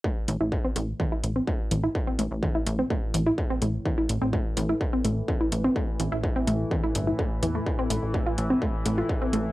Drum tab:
HH |-x-x-x-x|-x-x-x-x|-x-x-x-x|-x-x-x-x|
BD |o-o-o-o-|o-o-o-o-|o-o-o-o-|o-o-o-o-|

HH |-x-x-x-x|
BD |o-o-o-o-|